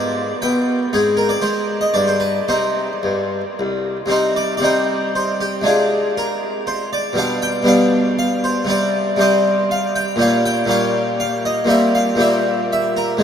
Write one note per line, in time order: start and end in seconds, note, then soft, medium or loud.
0.00 0.31 G#2 medium
0.00 0.87 B3 soft
0.00 0.41 D5 medium
0.42 0.82 B2 medium
0.42 0.92 G5 medium
0.93 1.33 G#2 medium
0.93 1.91 C4 soft
0.93 1.14 G#4 medium
1.17 1.30 A#4 medium
1.29 1.42 D5 medium
1.42 1.84 G#3 medium
1.42 1.81 C5 medium
1.81 1.94 D#5 medium
1.94 2.37 G2 medium
1.94 2.44 D4 soft
1.94 2.07 D5 medium
2.07 2.21 C5 medium
2.20 2.47 B4 medium
2.48 2.87 C3 medium
2.48 2.92 C4 soft
2.48 2.92 D#4 soft
2.48 3.41 C5 medium
3.03 3.41 G2 soft
3.59 3.96 C2 soft
4.06 4.58 C3 soft
4.06 4.60 G3 soft
4.06 4.61 C4 soft
4.11 4.62 D#4 soft
4.11 4.37 C5 medium
4.36 4.53 D5 medium
4.57 5.60 C3 medium
4.57 5.62 G3 soft
4.57 4.64 D5 medium
4.63 5.63 C4 soft
4.63 5.63 D#4 soft
4.63 5.08 C5 medium
5.15 5.41 C5 medium
5.41 5.62 G4 medium
5.62 7.11 C3 medium
5.62 7.12 G#3 soft
5.62 7.13 D4 soft
5.66 7.14 F4 soft
5.66 6.10 G#4 medium
6.17 6.68 A#4 medium
6.67 6.89 C5 medium
6.93 7.14 D5 medium
7.13 7.62 B2 medium
7.13 7.63 G3 soft
7.13 7.64 D4 medium
7.18 7.65 G4 soft
7.18 7.39 F5 medium
7.42 7.68 G5 medium
7.63 8.63 B2 medium
7.63 8.64 G3 soft
7.63 8.64 D4 soft
7.63 8.65 G4 soft
7.68 8.11 F5 medium
8.19 8.44 F5 loud
8.44 8.65 C5 medium
8.65 9.15 C3 medium
8.65 9.16 G3 soft
8.65 9.17 C4 medium
8.65 9.17 G4 medium
8.70 9.19 D5 medium
9.17 10.15 C3 medium
9.17 10.16 G3 medium
9.17 10.17 C4 medium
9.17 10.17 G4 medium
9.21 9.63 D#5 medium
9.71 9.95 F5 loud
9.96 10.20 G5 medium
10.16 10.64 A#2 medium
10.16 10.66 G3 medium
10.16 10.67 C#4 medium
10.16 10.68 G4 medium
10.22 10.42 F5 loud
10.46 10.67 G5 loud
10.66 11.63 A#2 medium
10.66 11.65 G3 medium
10.66 11.67 C#4 medium
10.66 11.68 G4 medium
10.71 11.19 F5 loud
11.20 11.42 F5 loud
11.45 11.67 D#5 medium
11.65 12.14 A#2 medium
11.65 12.16 G3 medium
11.65 12.17 C4 medium
11.69 12.18 G4 medium
11.69 11.96 E5 loud
11.95 12.17 F5 loud
12.15 13.17 A#2 medium
12.15 13.18 G3 medium
12.15 13.19 C4 soft
12.20 13.19 G4 medium
12.20 12.71 E5 loud
12.73 12.98 E5 medium
12.97 13.23 A#4 medium
13.17 13.23 G#2 medium
13.17 13.23 G#3 medium
13.17 13.23 C4 medium